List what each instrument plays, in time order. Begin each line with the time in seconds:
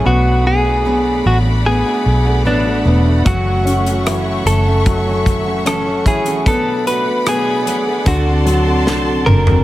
0.05 fingered electric bass B1, steel-string acoustic guitar B2 F#3 A3 D4 F#4, string section A3 D5 F#5 B5, grand piano B3, clean electric guitar F#4
0.44 grand piano B3, clean electric guitar G#4
0.65 steel-string acoustic guitar A3 D4 F#4
0.85 steel-string acoustic guitar B2 F#3 A3 D4 F#4, grand piano B3
1.24 fingered electric bass A1, steel-string acoustic guitar F#3 A3 D4 F#4, clean electric guitar F#4
1.45 steel-string acoustic guitar A3 D4 F#4
1.66 grand piano B3, clean electric guitar G#4
1.85 steel-string acoustic guitar A3 D4 F#4
2.06 fingered electric bass B1
2.25 steel-string acoustic guitar A3 D4 F#4
2.45 fingered electric bass A1, steel-string acoustic guitar B2 F#3 A3 D4 F#4, grand piano B3, clean electric guitar D4
2.65 steel-string acoustic guitar A3 D4 F#4
2.85 fingered electric bass E1, steel-string acoustic guitar F#3 A3 D4 F#4, grand piano B3
3.05 steel-string acoustic guitar A3 D4 F#4
3.25 fingered electric bass F#1, steel-string acoustic guitar F#2 C#3 E3 A3 C#4 F#4, grand piano F#3, clean electric guitar F#4, string section E5 C#6, kick, closed hi-hat
3.65 grand piano C#4, closed hi-hat
3.86 steel-string acoustic guitar E3 A3 C#4 F#4, closed hi-hat
4.06 steel-string acoustic guitar F#2 C#3 E3 A3 C#4 F#4, grand piano E4, cross-stick, closed hi-hat
4.45 fingered electric bass F#1, steel-string acoustic guitar E3 A3 C#4 F#4, clean electric guitar A4, closed hi-hat
4.66 steel-string acoustic guitar E3 A3 C#4 F#4
4.86 grand piano F#3, kick, closed hi-hat
5.06 steel-string acoustic guitar E3 A3 C#4 F#4
5.26 kick, closed hi-hat
5.46 steel-string acoustic guitar E3 A3 C#4 F#4
5.66 steel-string acoustic guitar F#2 C#3 E3 A3 C#4 F#4, grand piano C#4, clean electric guitar A4, cross-stick, closed hi-hat
5.86 steel-string acoustic guitar E3 A3 C#4 F#4
6.06 fingered electric bass A1, steel-string acoustic guitar E3 A3 C#4 F#4, grand piano E4, clean electric guitar G#4, kick, closed hi-hat
6.26 steel-string acoustic guitar E3 A3 C#4 F#4, closed hi-hat
6.46 fingered electric bass B1, steel-string acoustic guitar B2 F#3 A3 D4 A4, grand piano B3, clean electric guitar A4, string section D5 F#5 B5, kick, closed hi-hat
6.87 grand piano F#4, clean electric guitar B4, closed hi-hat
7.05 steel-string acoustic guitar A3 D4 A4
7.26 steel-string acoustic guitar B2 F#3 A3 D4, grand piano B3, clean electric guitar G#4, cross-stick, closed hi-hat
7.65 fingered electric bass A1, steel-string acoustic guitar F#3 A3 D4 A4, closed hi-hat
7.86 steel-string acoustic guitar A3 D4 A4
8.05 fingered electric bass D2, grand piano D3, steel-string acoustic guitar D3 A3 C4 F#4 A4, clean electric guitar F#4, string section A5 C6, kick, closed hi-hat
8.26 steel-string acoustic guitar C4 F#4 A4
8.46 grand piano F#3, closed hi-hat
8.66 steel-string acoustic guitar C4 F#4 A4
8.86 fingered electric bass C2, steel-string acoustic guitar D3 A3 C4 F#4 A4, grand piano D3, snare
9.07 steel-string acoustic guitar C4 F#4 A4
9.26 fingered electric bass F#1, steel-string acoustic guitar A3 C4 F#4 A4, clean electric guitar A#4, mid tom
9.47 steel-string acoustic guitar C4 F#4 A4, floor tom